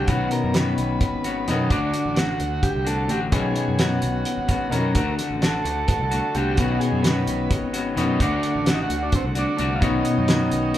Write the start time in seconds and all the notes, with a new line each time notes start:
0.07 B1 B2 D#3 B3 C#4 F#4, kick, closed hi-hat
0.31 A#4, closed hi-hat
0.44 F#2
0.54 D#3 B3 C#4 F#4 B4, snare, closed hi-hat
0.78 B1, closed hi-hat
1.01 kick, closed hi-hat
1.13 G#1
1.24 B3 C#4 F#4, closed hi-hat
1.48 F#2 B2 D#3 B3 C#4 D#4 F#4, snare, closed hi-hat
1.69 D2 D3 A3 D4 F#4, kick, closed hi-hat
1.94 closed hi-hat
2.05 A1
2.15 D3 A3 D4 F#4, snare, closed hi-hat
2.40 D2, closed hi-hat
2.63 G4, kick, closed hi-hat
2.75 C2
2.85 A3 D4 F#4 A4, closed hi-hat
3.08 A1 D3 A3 D4 F#4 G4, closed hi-hat
3.32 B1 B2 D#3 B3 C#4 F#4 G#4, kick, closed hi-hat
3.56 closed hi-hat
3.68 F#2
3.78 D#3 B3 C#4 F#4, snare, closed hi-hat
4.02 B1, closed hi-hat
4.25 closed hi-hat
4.37 G#1
4.48 B3 C#4 F#4, kick, closed hi-hat
4.70 F#2 B2 D#3 B3 C#4 F#4 A#4, closed hi-hat
4.94 D2 D3 A3 D4 F#4 A4 D5 F#5, kick, closed hi-hat
5.19 snare, closed hi-hat
5.30 A1
5.41 D3 A3 D4 F#4 A4, snare, closed hi-hat
5.65 D2, closed hi-hat
5.88 A4, kick, closed hi-hat
5.99 C2
6.11 A3 D4 F#4, closed hi-hat
6.35 C2 D3 A3 D4 F#4 G4, closed hi-hat
6.56 B1 B2 D#3 B3 C#4 F#4 C#5, kick, closed hi-hat
6.60 F#4 B4 D#5
6.80 G#4, closed hi-hat
6.92 F#2
7.02 D#3 B3 C#4 B4, snare, closed hi-hat
7.06 F#4
7.27 B1, closed hi-hat
7.51 kick, closed hi-hat
7.62 G#1
7.73 B3 C#4 F#4, closed hi-hat
7.95 F#2 B2 D#3 B3 C#4 D#4 F#4, snare, closed hi-hat
8.13 D#4
8.19 D2 D3 A3 D4 F#4 A4 D5 F#5, kick, closed hi-hat
8.43 closed hi-hat
8.55 A1
8.66 D3 A3 D4 F#4, snare, closed hi-hat
8.74 D#4
8.83 F#4
8.90 D2, closed hi-hat
9.03 D4
9.12 C4, kick, closed hi-hat
9.24 C2
9.35 A3 D4 F#4, closed hi-hat
9.57 C2 D3 A3 D4 F#4, closed hi-hat
9.75 F4
9.80 B1 B2 D#3 B3 C#4 D#4 F#4 B4 C#5 D#5, kick, closed hi-hat
10.05 closed hi-hat
10.18 F#2
10.27 D#3 B3 C#4 F#4, snare, closed hi-hat
10.51 B1, closed hi-hat
10.74 closed hi-hat